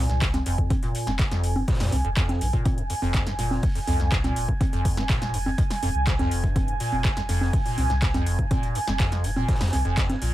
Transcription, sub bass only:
0.09 0.42 C2 loud
0.46 0.56 F1 medium
0.83 0.92 F1 loud
1.07 1.64 F1 loud
1.80 1.90 F2 medium
1.92 2.02 C2 medium
2.04 2.14 F1 loud
2.41 2.51 A#1 loud
2.78 2.87 F1 loud
3.02 3.59 F1 loud
3.87 3.97 C2 loud
4.00 4.32 C2 loud
4.36 4.46 F1 medium
4.73 4.82 F1 loud
4.97 5.54 F1 loud
5.83 5.92 D#1 loud
5.95 6.27 C2 medium
6.31 6.64 F1 medium
6.68 6.78 F1 loud
6.92 7.49 F1 loud
7.78 7.87 C2 loud
7.90 8.22 C2 loud
8.26 8.36 F1 medium
8.63 8.73 F1 loud
8.87 9.44 F1 loud
9.61 9.70 F2 medium
9.73 9.83 C2 medium
9.85 9.95 F1 medium
10.22 10.31 A#1 loud

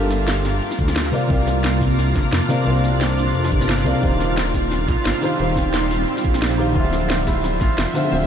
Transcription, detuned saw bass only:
0.00 0.61 G1 loud
0.79 1.12 D2 medium
1.30 1.97 C2 loud
1.99 2.14 C2 medium
2.15 2.24 G1 medium
2.33 2.41 F2 medium
2.67 3.34 C2 loud
3.35 3.50 F2 medium
3.52 3.85 G1 loud
3.86 3.94 C2 medium
4.03 4.70 D#1 loud
4.72 4.87 D#1 medium
4.88 4.97 A#1 medium
5.06 5.14 G1 medium
5.39 6.06 D#1 loud
6.25 6.75 A#1 medium
6.76 7.43 D1 loud
7.44 7.59 D1 medium
7.61 7.69 A1 medium
7.78 7.86 F1 medium
8.12 8.27 D1 loud

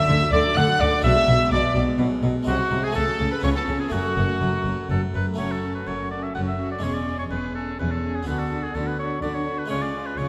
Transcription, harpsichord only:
0.00 0.98 A3 medium
0.00 0.99 D4 medium
0.00 1.00 F#4 medium
0.09 0.31 D3 medium
0.33 0.54 D3 medium
0.57 0.78 D3 medium
0.80 1.02 D3 medium
1.00 2.41 G#3 medium
1.00 2.42 D4 medium
1.00 2.43 F#4 medium
1.04 1.25 B2 medium
1.28 1.49 B2 medium
1.51 1.73 B2 medium
1.75 1.97 B2 medium
1.99 2.21 B2 medium
2.23 2.45 B2 medium
2.43 2.92 G#3 medium
2.43 2.93 D#4 medium
2.43 2.92 F#4 medium
2.47 2.69 C3 medium
2.71 2.93 C3 medium
2.91 3.40 A3 medium
2.91 3.40 C#4 medium
2.91 3.42 F#4 medium
2.95 3.17 C#3 medium
3.19 3.41 C#3 medium
3.40 3.89 B3 medium
3.40 3.88 C#4 medium
3.40 3.91 F4 medium
3.44 3.66 C#3 medium
3.68 3.90 C#3 medium
3.88 5.33 A3 medium
3.88 5.34 C#4 medium
3.88 5.35 F#4 medium
3.93 4.15 F#2 medium
4.17 4.39 F#2 medium
4.41 4.63 F#2 medium
4.66 4.88 F#2 medium
4.90 5.12 F#2 medium
5.14 5.37 F#2 medium
5.34 6.76 A3 soft
5.34 6.77 C#4 soft
5.34 6.78 F#4 soft
5.38 5.78 F#2 soft
5.87 6.26 F#2 soft
6.35 6.74 F#2 soft
6.79 8.21 G#3 soft
6.79 8.22 C#4 soft
6.79 8.23 G#4 soft
6.83 7.22 E2 soft
7.31 7.70 E2 soft
7.80 8.19 E2 soft
8.23 9.64 B3 soft
8.23 9.65 F#4 soft
8.27 8.66 D3 soft
8.75 9.14 D3 soft
9.22 9.61 D3 soft
9.66 10.29 G#3 soft
9.66 10.29 F4 soft
9.66 10.29 G#4 soft
9.70 10.09 C#3 soft
10.18 10.29 C#3 soft

